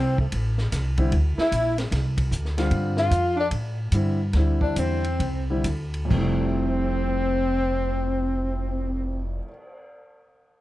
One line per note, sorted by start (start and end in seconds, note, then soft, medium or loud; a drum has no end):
0.00 0.31 C2 medium
0.00 0.16 C4 medium
0.00 0.18 C4 medium
0.18 0.26 A3 soft
0.18 0.27 A3 soft
0.18 kick medium
0.32 0.71 A1 medium
0.32 kick soft
0.32 ride medium
0.58 snare soft
0.72 1.11 C2 medium
0.72 kick soft
0.72 snare soft
0.72 hi-hat pedal soft
0.72 ride medium
0.97 1.11 D3 medium
0.97 1.11 G3 medium
0.97 1.11 C4 medium
0.97 1.11 E4 medium
0.97 kick soft
0.97 ride soft
1.12 1.36 D2 medium
1.12 kick soft
1.12 ride medium
1.38 1.75 E4 medium
1.38 1.76 E4 medium
1.38 muted upright bass stroke soft
1.38 snare soft
1.52 1.90 A#1 medium
1.52 kick soft
1.52 hi-hat pedal medium
1.52 ride medium
1.78 1.85 C4 soft
1.78 1.86 C4 medium
1.78 snare soft
1.78 ride soft
1.91 2.30 C2 medium
1.91 kick soft
1.91 snare soft
1.91 ride medium
2.17 kick soft
2.17 ride medium
2.31 2.70 D2 medium
2.31 kick soft
2.31 hi-hat pedal medium
2.45 snare soft
2.58 3.09 D3 medium
2.58 3.09 G3 medium
2.58 3.09 C4 medium
2.58 3.09 F4 medium
2.58 snare soft
2.58 ride soft
2.71 3.10 G2 medium
2.71 kick soft
2.71 ride medium
2.97 3.35 F4 medium
2.97 snare soft
3.11 3.50 F2 medium
3.11 kick soft
3.11 hi-hat pedal medium
3.11 ride medium
3.36 3.50 D4 medium
3.36 3.48 D4 medium
3.51 3.91 A2 medium
3.51 kick soft
3.51 ride medium
3.92 4.32 G2 medium
3.92 4.17 D3 medium
3.92 4.17 G3 medium
3.92 4.18 C4 medium
3.92 4.18 E4 medium
3.92 kick soft
3.92 hi-hat pedal medium
3.92 ride medium
4.33 4.75 D2 medium
4.33 5.00 D3 medium
4.33 5.00 G3 medium
4.33 5.00 C4 soft
4.33 5.00 E4 medium
4.33 kick soft
4.33 snare soft
4.33 ride soft
4.61 4.79 D4 medium
4.61 4.81 D4 medium
4.61 kick soft
4.76 5.18 E2 medium
4.76 5.49 C4 medium
4.76 5.50 C4 medium
4.76 kick soft
4.76 hi-hat pedal medium
4.76 ride medium
5.04 ride soft
5.19 5.63 C2 medium
5.19 kick soft
5.19 ride medium
5.50 5.64 D3 medium
5.50 5.64 G3 medium
5.50 5.64 C4 medium
5.50 5.64 E4 medium
5.64 6.09 D2 medium
5.64 kick soft
5.64 hi-hat pedal soft
5.64 ride medium
5.94 ride soft
6.05 9.37 F2 medium
6.05 9.40 C3 medium
6.10 9.38 F1 medium
6.10 9.43 G3 medium
6.10 9.38 C4 medium
6.10 9.40 C4 medium
6.10 kick medium
6.10 crash medium
6.14 9.46 A3 medium
6.14 9.49 E4 medium
6.41 cymbal swell soft